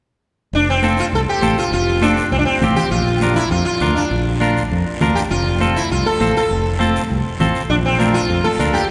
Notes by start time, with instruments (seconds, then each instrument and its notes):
0.53 fingered electric bass F1, sitar D4, long guiro
0.70 sitar C4
0.83 clean electric guitar C4 F4 A4, high conga, short guiro
0.97 sitar F4, short guiro
1.12 fingered electric bass C2, sitar A4, long guiro
1.29 sitar G4
1.42 fingered electric bass A1, clean electric guitar C4 F4 A4, high conga, short guiro
1.58 sitar F4, short guiro
1.72 fingered electric bass F1, sitar F4, long guiro
2.02 clean electric guitar C4 F4 A4, sitar D4, high conga, short guiro
2.17 short guiro
2.32 fingered electric bass C2, sitar C4, long guiro
2.39 sitar D4
2.46 sitar C4
2.62 fingered electric bass A1, clean electric guitar C4 F4 G4, high conga, low conga, short guiro
2.76 sitar G4, low conga, short guiro
2.91 fingered electric bass A#1, sitar F4, long guiro
3.21 clean electric guitar D4 F4 A#4, high conga, short guiro
3.36 sitar E4, short guiro
3.51 fingered electric bass F2, sitar F4, long guiro
3.65 sitar F4
3.81 fingered electric bass D2, clean electric guitar D4 F4 A#4, high conga, short guiro
3.96 sitar D4, short guiro
4.11 fingered electric bass A#1, long guiro
4.40 clean electric guitar D4 F4 A#4, high conga, short guiro
4.57 short guiro
4.71 fingered electric bass F2, long guiro
5.01 fingered electric bass D2, clean electric guitar D4 F4 A#4, high conga, low conga, short guiro
5.15 sitar G4, short guiro
5.31 fingered electric bass F1, sitar F4, long guiro
5.60 clean electric guitar C4 F4 A4, high conga, short guiro
5.76 sitar E4, short guiro
5.91 fingered electric bass C2, sitar F4, long guiro
6.06 sitar A4, high conga
6.20 fingered electric bass A1, clean electric guitar C4 F4 A4, high conga, short guiro
6.37 sitar A4, short guiro
6.51 fingered electric bass F1, long guiro
6.79 clean electric guitar C4 F4 A4, high conga, short guiro
6.96 short guiro
7.10 fingered electric bass C2, long guiro
7.40 fingered electric bass A1, clean electric guitar C4 F4 A4, high conga, low conga, short guiro
7.55 short guiro
7.70 fingered electric bass A#1, sitar D4, long guiro
7.85 sitar C4
7.99 clean electric guitar D4 F4 A#4, high conga, short guiro
8.14 sitar F4, short guiro
8.30 fingered electric bass F2, long guiro
8.44 sitar A4, high conga
8.59 fingered electric bass D2, clean electric guitar D4 F4 A#4, high conga, short guiro
8.74 sitar G4, short guiro